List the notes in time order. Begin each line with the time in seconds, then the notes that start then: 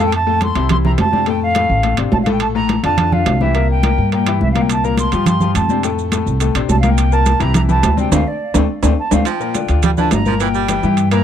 Already playing: F2
0.00 A2 A3 A4
0.05 G5
0.12 A5, high conga, high timbale
0.27 A2 A3 A4, high conga
0.41 C6, high conga, high timbale
0.55 C2 C3 C4 E4, high conga, high timbale
0.69 C3 C4 E4 C6, high conga, low conga, high timbale
0.84 C3 C4 E4 A#5, high conga, low conga
0.98 F2 A5, high conga, high timbale, low timbale
1.13 C3 C4 D4, high conga
1.26 A2 A3 A4 G5, high timbale
1.41 F5, high conga
1.55 A2 A3 A4, high conga, high timbale
1.70 A1, high conga
1.83 A2 A3 A4, high conga, high timbale
1.97 A1 C3 C4 D4, high conga, high timbale
2.12 A#1 A5, high conga, low timbale
2.22 A2 A3 F5, high timbale
2.26 A4, high conga
2.32 G5
2.40 A5, high timbale
2.55 A2 A3 A4 A#5, high conga
2.69 high conga, high timbale
2.83 F2 D3 D4 F4 A5, high timbale
2.97 D3 D4 F4, high conga, low conga, high timbale
3.12 D3 D4 F4 F5, high conga, low conga
3.26 C2, high conga, high timbale, low timbale
3.41 E3 E4 G4 E5, high conga
3.55 A#2 A#3 A#4, high conga, high timbale
3.69 G5, high conga
3.83 A#2 A#3 A#4, high conga, high timbale
3.98 G2, high conga
4.12 A#2 A#3 A#4 G5, high conga, high timbale
4.26 E3 E4 G4, high timbale
4.41 C2 E5, high conga
4.51 F5
4.55 A#2 A#3 A#4, high conga, high timbale
4.61 G5
4.69 A5, high conga, high timbale, maracas
4.84 A#2 A#3 A#4 A#5, high conga, maracas
4.97 C6, high conga, high timbale, maracas
5.12 G2 F3 F4 G4, high conga, high timbale, maracas
5.26 F3 F4 G4 C6, high conga, low conga, high timbale, maracas
5.40 F3 F4 G4, high conga, low conga, maracas
5.55 F2 A5, high conga, high timbale, maracas
5.69 C3 C4 D4, high conga, maracas
5.83 A2 A3 A4 G5, high conga, high timbale, maracas
5.98 high conga, maracas
6.12 A2 A3 A4, high conga, high timbale, maracas
6.26 C2, high conga, maracas
6.40 A2 A3 A4, high conga, high timbale, maracas
6.55 A#1 C3 C4 D4, high conga, high timbale, maracas
6.69 C2 A5, high conga, low timbale, maracas
6.79 A#2 F5, high timbale
6.83 A#3 A#4, high conga, maracas
6.90 G5
6.98 high conga, high timbale, maracas
7.12 A#2 A#3 A#4 A5, high conga, maracas
7.26 high conga, high timbale, maracas
7.40 C2 E3 E4 G4 A#5, high conga, high timbale, maracas
7.54 E3 E4 G4 A#5, high conga, low conga, high timbale, maracas
7.69 E3 E4 G4 A5, high conga, low conga, maracas
7.83 D2, high conga, high timbale, low timbale, maracas
7.97 C3 C4 D4 G5, high conga, maracas
8.12 D2 A3 C4 D4 F5, high conga, high timbale, maracas
8.27 D5
8.54 D2 A3 C4 D4, high conga, high timbale, maracas
8.83 D2 A3 C4 D4, high conga, high timbale, maracas
8.99 A5
9.11 D2 A3 C4 D4 F5, high conga, high timbale, maracas
9.25 F3 G5, high timbale, maracas
9.40 A#2 A#3 A#4, high conga, maracas
9.55 D3 D4 F4, high conga, high timbale, maracas
9.68 D2 D3 D4 F4, high conga, high timbale, maracas
9.83 G3 G5, high conga, low conga, high timbale, maracas
9.97 D3 E3 D4 F4 A5, high conga, low conga, maracas
10.11 G1 A#5, high conga, high timbale, low timbale, maracas
10.26 A#2 F3 A#3 A#4, high conga, maracas
10.40 A#2 E3 A#3 A#4 G5, high conga, high timbale, maracas
10.54 G3, high conga, maracas
10.68 E3 E4 G4, high conga, high timbale, maracas
10.83 G2 E3 E4 G4, high conga, maracas
10.97 high timbale, maracas
11.11 A#2 E3 A#3 A#4 A#5, high timbale, maracas